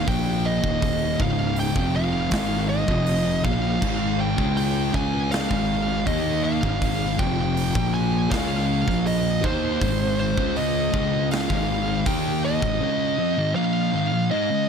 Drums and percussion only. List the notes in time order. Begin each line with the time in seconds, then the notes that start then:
0.07 kick, open hi-hat
0.64 kick
0.82 kick, open hi-hat
1.20 kick
1.56 open hi-hat
1.76 kick
2.31 kick, snare, open hi-hat
2.88 kick
3.06 open hi-hat
3.44 kick
3.82 kick, crash
4.38 kick
4.57 open hi-hat
4.94 kick
5.32 snare, open hi-hat
5.51 kick
6.07 kick, open hi-hat
6.63 kick
6.82 kick, open hi-hat
7.19 kick
7.57 open hi-hat
7.75 kick
8.32 kick, snare, open hi-hat
8.88 kick, snare
9.06 open hi-hat
9.44 kick
9.81 kick, open hi-hat
10.38 kick
10.56 open hi-hat
10.94 kick
11.31 snare, open hi-hat
11.50 kick
12.06 kick, open hi-hat
12.62 kick